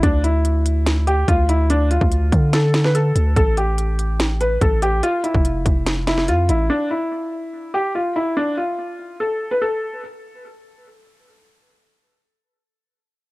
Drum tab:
HH |x-x-x-x-x-x-x-x-|x-x-x-x-x-x-x-x-|x-x-x-x-x-x-x-x-|x-x-x-x-x-x-x-x-|
SD |--------o-------|--------o-oo----|--------o-------|--------o-oo----|
BD |o-----------o---|---o--o---------|o-----------o---|---o--o---------|

HH |----------------|----------------|----------------|----------------|
SD |----------------|----------------|----------------|----------------|
BD |----------------|----------------|----------------|----------------|